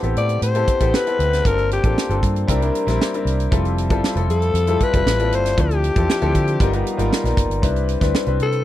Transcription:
Already playing: grand piano B3 C4 E4 G4 A4
0.03 fingered electric bass A1, grand piano B3 C4 E4 G4 A4, closed hi-hat
0.16 fingered electric bass A2, alto saxophone D5, closed hi-hat
0.29 closed hi-hat
0.42 fingered electric bass A2, alto saxophone C5, closed hi-hat
0.54 grand piano B3 C4 E4 G4 A4, closed hi-hat
0.68 kick, closed hi-hat
0.80 fingered electric bass A1, grand piano B3 C4 E4 G4 A4, kick, closed hi-hat
0.94 alto saxophone B4, snare
1.06 grand piano B3 C4 E4 G4 A4, closed hi-hat
1.19 fingered electric bass D2, closed hi-hat
1.33 snare, closed hi-hat
1.45 fingered electric bass G1, grand piano A#3 C4 D4 F4 A4, alto saxophone A#4, kick, closed hi-hat
1.58 closed hi-hat
1.71 alto saxophone G4, closed hi-hat
1.84 fingered electric bass A1, grand piano A#3 C4 D4 F4 A4, kick, closed hi-hat
1.98 snare
2.09 fingered electric bass G1, grand piano A#3 C4 D4 F4 A4, closed hi-hat
2.23 fingered electric bass G2, kick, closed hi-hat
2.36 closed hi-hat
2.47 fingered electric bass C2, grand piano G3 C4 D4 E4 A#4, kick, closed hi-hat
2.61 grand piano G3 C4 D4 E4 A#4, closed hi-hat
2.75 closed hi-hat
2.86 fingered electric bass A#1, grand piano G3 C4 D4 E4 A#4, snare, closed hi-hat
3.01 snare
3.14 grand piano G3 C4 D4 E4 A#4, closed hi-hat
3.25 fingered electric bass C2, closed hi-hat
3.40 closed hi-hat
3.51 fingered electric bass F1, grand piano G3 C4 E4 F4 A4, kick, closed hi-hat
3.65 closed hi-hat
3.78 closed hi-hat
3.90 fingered electric bass G1, grand piano G3 C4 E4 F4 A4, kick, closed hi-hat
4.04 snare
4.15 fingered electric bass F1, grand piano G3 C4 E4 F4 A4, closed hi-hat
4.28 fingered electric bass F2, alto saxophone A4, closed hi-hat
4.42 closed hi-hat
4.54 fingered electric bass F2, closed hi-hat
4.67 grand piano G3 C4 E4 F4 A4, closed hi-hat
4.80 alto saxophone B4, kick, closed hi-hat
4.93 fingered electric bass F1, grand piano G3 C4 E4 F4 A4, kick, closed hi-hat
5.06 fingered electric bass A1, snare
5.19 grand piano G3 C4 E4 F4 A4, closed hi-hat
5.32 fingered electric bass G1, alto saxophone C5, closed hi-hat
5.46 snare, closed hi-hat
5.57 fingered electric bass D2, grand piano F3 C4 D4 E4 A4, alto saxophone G4, kick, closed hi-hat
5.71 closed hi-hat
5.84 closed hi-hat
5.96 fingered electric bass E2, grand piano F3 C4 D4 E4 A4, kick, closed hi-hat
6.10 snare
6.21 fingered electric bass D2, grand piano F3 C4 D4 E4 A4, closed hi-hat
6.35 fingered electric bass D3, kick, closed hi-hat
6.47 closed hi-hat
6.60 fingered electric bass G1, grand piano G3 B3 D#4 F4 A#4, kick, closed hi-hat
6.73 grand piano G3 B3 D#4 F4 A#4, closed hi-hat
6.87 closed hi-hat
6.97 fingered electric bass G#1, grand piano G3 B3 D#4 F4 A#4, closed hi-hat
7.13 snare
7.24 fingered electric bass A#1, grand piano G3 B3 D#4 F4 A#4, snare, closed hi-hat
7.37 fingered electric bass G1, kick, closed hi-hat
7.50 fingered electric bass G1, closed hi-hat
7.62 fingered electric bass C2, grand piano G3 C4 D4 E4 B4, kick, closed hi-hat
7.76 closed hi-hat
7.89 closed hi-hat
8.00 fingered electric bass D2, grand piano G3 C4 D4 E4 B4, kick, snare, closed hi-hat
8.15 snare
8.26 fingered electric bass C2, grand piano G3 C4 D4 E4 B4, closed hi-hat
8.40 fingered electric bass C3, alto saxophone A4, closed hi-hat
8.52 closed hi-hat

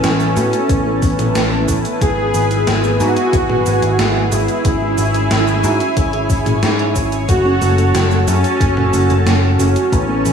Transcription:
Already playing: fm electric piano A3 B3 E4 A4, supersaw synth C#4, analog synth pad E4 A4 B4 A5
0.04 picked electric bass A1, snare, closed hi-hat, cabasa
0.20 fm electric piano A3 B3 E4 A4, cabasa
0.36 picked electric bass A2, fm electric piano A3 B3 E4 F#4, open hi-hat, cabasa
0.53 closed hi-hat, cabasa
0.69 picked electric bass A1, fm electric piano A3 B3 E4 A4, kick, closed hi-hat, cabasa
0.86 fm electric piano A3 B3 E4 A4
1.02 picked electric bass A1, kick, open hi-hat, cabasa
1.19 picked electric bass A1, fm electric piano A3 B3 E4 A4, closed hi-hat, mid tom, cabasa
1.35 picked electric bass A1, fm electric piano A3 B3 E4 A4, snare, closed hi-hat, cabasa
1.68 picked electric bass A1, fm electric piano A3 B3 E4 C#5, kick, open hi-hat, cabasa
1.85 closed hi-hat, cabasa
2.01 picked electric bass G#1, fm electric piano G#3 B3 E4 G#4, analog synth pad G#4 G#5, supersaw synth G#4, kick, closed hi-hat, cabasa
2.18 fm electric piano G#3 B3 E4 G#4
2.34 picked electric bass G#1, open hi-hat, cabasa
2.51 fm electric piano G#3 B3 E4 G#4, closed hi-hat, cabasa
2.67 picked electric bass G#1, snare, closed hi-hat, cabasa
2.84 fm electric piano G#3 B3 E4 G#4, cabasa
3.00 picked electric bass G#2, fm electric piano G#3 B3 E4 F#4, supersaw synth F#4, open hi-hat, cabasa
3.17 closed hi-hat, cabasa
3.33 picked electric bass G#1, fm electric piano G#3 B3 E4 G#4, kick, closed hi-hat, cabasa
3.50 fm electric piano G#3 B3 E4 G#4, mid tom
3.66 picked electric bass G#1, open hi-hat, cabasa
3.82 picked electric bass G#1, fm electric piano G#3 B3 E4 G#4, closed hi-hat, cabasa
3.99 picked electric bass G#1, fm electric piano G#3 B3 E4 G#4, snare, closed hi-hat, cabasa
4.32 picked electric bass G#1, fm electric piano G#3 B3 E4 C#5, supersaw synth E4, open hi-hat, cabasa
4.48 closed hi-hat, cabasa
4.65 picked electric bass G#1, fm electric piano G#3 C#4 E4 G#4, analog synth pad C#5 G#5, kick, closed hi-hat, cabasa
4.81 fm electric piano G#3 C#4 E4 G#4
4.98 picked electric bass G#1, open hi-hat, cabasa
5.14 fm electric piano G#3 C#4 E4 G#4, closed hi-hat, cabasa
5.31 picked electric bass G#1, snare, closed hi-hat, cabasa
5.47 fm electric piano G#3 C#4 E4 G#4, cabasa
5.64 picked electric bass G#2, fm electric piano G#3 C#4 E4 F#4, open hi-hat, cabasa
5.80 closed hi-hat, cabasa
5.97 picked electric bass G#1, fm electric piano G#3 C#4 E4 G#4, kick, closed hi-hat, cabasa
6.13 fm electric piano G#3 C#4 E4 G#4, closed hi-hat
6.30 picked electric bass G#1, kick, open hi-hat, cabasa
6.46 picked electric bass G#1, fm electric piano G#3 C#4 E4 G#4, closed hi-hat, mid tom, cabasa
6.63 picked electric bass G#2, fm electric piano G#3 C#4 E4 G#4, snare, closed hi-hat, cabasa
6.79 closed hi-hat
6.96 picked electric bass G#1, fm electric piano G#3 C#4 E4 C#5, kick, open hi-hat, cabasa
7.12 closed hi-hat, cabasa
7.28 picked electric bass F#1, fm electric piano A3 C#4 F#4 A4, analog synth pad F#4 A4 A5, synth arpeggio sound F#4, supersaw synth F#4, kick, closed hi-hat, cabasa
7.45 fm electric piano A3 C#4 A4, synth arpeggio sound C#4
7.61 picked electric bass F#1, synth arpeggio sound A3, open hi-hat, cabasa
7.78 fm electric piano A3 C#4 F#4 A4, closed hi-hat, cabasa
7.94 picked electric bass F#1, synth arpeggio sound F#3, snare, closed hi-hat, cabasa
8.11 fm electric piano A3 C#4 A4, synth arpeggio sound F#4, cabasa
8.27 picked electric bass F#2, fm electric piano A3 C#4 F#4 G#4, synth arpeggio sound C#4, supersaw synth C#4, open hi-hat, cabasa
8.44 closed hi-hat, cabasa
8.61 picked electric bass F#1, fm electric piano A3 C#4 F#4 A4, synth arpeggio sound F#4, kick, closed hi-hat, cabasa
8.77 fm electric piano A3 C#4 F#4 A4, synth arpeggio sound C#4, mid tom
8.93 picked electric bass F#1, synth arpeggio sound A3, open hi-hat, cabasa
9.10 picked electric bass F#1, fm electric piano A3 C#4 F#4 A4, closed hi-hat, cabasa
9.26 picked electric bass F#1, synth arpeggio sound F#3, fm electric piano A3 C#4 F#4 A4, snare, closed hi-hat, cabasa
9.43 synth arpeggio sound F#4
9.59 picked electric bass F#1, fm electric piano A3 C#4 F#4 C#5, supersaw synth C#4, synth arpeggio sound C#4, open hi-hat, cabasa
9.76 closed hi-hat, cabasa
9.92 picked electric bass A1, fm electric piano A3 B3 E4 A4, synth arpeggio sound E4, analog synth pad E4 A4 B4 A5, kick, closed hi-hat, cabasa
10.09 fm electric piano A3 B3 E4 A4, synth arpeggio sound B3
10.25 picked electric bass A1, synth arpeggio sound A3, open hi-hat, cabasa

